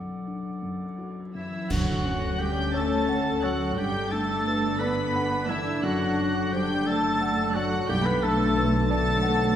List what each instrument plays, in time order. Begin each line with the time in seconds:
Already playing: felt piano B1 F#2, clarinet A4, oboe D5, flute F#5
0.27 felt piano D4
0.62 felt piano F#2
0.98 felt piano F#4
1.35 felt piano F#2, cello section E3, clarinet E4, oboe E4, violin section E5 E6, flute E5
1.69 felt piano D2, double bass section D2, cello section F#3, french horn section A3 C#4, viola section C#4 A4, clarinet F#4, oboe F#4, violin section F#5 F#6, flute F#5, concert bass drum, crash
2.04 felt piano C#4
2.39 cello section G3, oboe G4, clarinet G4, felt piano A4, violin section G5 G6, flute G5
2.74 cello section A3, clarinet A4, oboe A4, felt piano C#5, violin section A5 A6, flute A5
3.09 felt piano F#5
3.43 cello section F#3, oboe F#4, clarinet F#4, felt piano C#5, violin section F#5 F#6, flute F#5
3.77 double bass section G1, felt piano G2, french horn section D3 D4, cello section G3, viola section D4, oboe G4, clarinet G4, violin section G5 G6, flute G5
4.11 cello section A3, felt piano D4, oboe A4, clarinet A4, flute A5, violin section A5 A6
4.47 felt piano B4
4.79 cello section B3, oboe B4, clarinet B4, felt piano D5, violin section B5 B6, flute B5
5.16 felt piano F#5
5.49 cello section E3, oboe E4, clarinet E4, felt piano D5, violin section E5 E6, flute E5
5.83 double bass section F#1, felt piano F#2, cello section F#3, clarinet F#4, oboe F#4, viola section A4, violin section F#5 F#6, flute F#5
6.19 felt piano D4
6.52 cello section G3, oboe G4, clarinet G4, felt piano C5, flute G5, violin section G5 G6
6.86 cello section A3, clarinet A4, oboe A4, felt piano D5, violin section A5 A6, flute A5
7.21 felt piano F#5
7.54 cello section F#3, oboe F#4, clarinet F#4, felt piano D5, violin section F#5 F#6, flute F#5
7.88 double bass section B1, felt piano B1, french horn section D3 F#3, viola section D3, cello section G3, oboe G4, clarinet G4, violin section G5 G6, flute G5
8.04 cello section B3, clarinet B4, oboe B4, violin section B5 B6, flute B5
8.22 cello section A3, felt piano D4, oboe A4, clarinet A4, violin section A5 A6, flute A5
8.57 felt piano B4
8.89 cello section A3, clarinet A4, oboe A4, felt piano D5, violin section A5 A6, flute A5
9.23 felt piano F#5